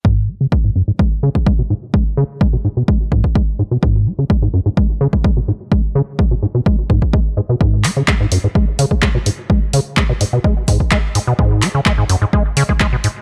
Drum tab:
HH |----------------|----------------|----------------|----------------|
CP |----------------|----------------|----------------|----------------|
BD |o---o---o--oo---|o---o---o-ooo---|o---o---o--oo---|o---o---o-ooo---|

HH |--o---o---o---o-|--o---o---o---o-|--o---o---o---o-|
CP |--x-x-------x---|----x-------x---|--x-x-------x---|
BD |o---o---o--oo---|o---o---o-ooo---|o---o---o--oo---|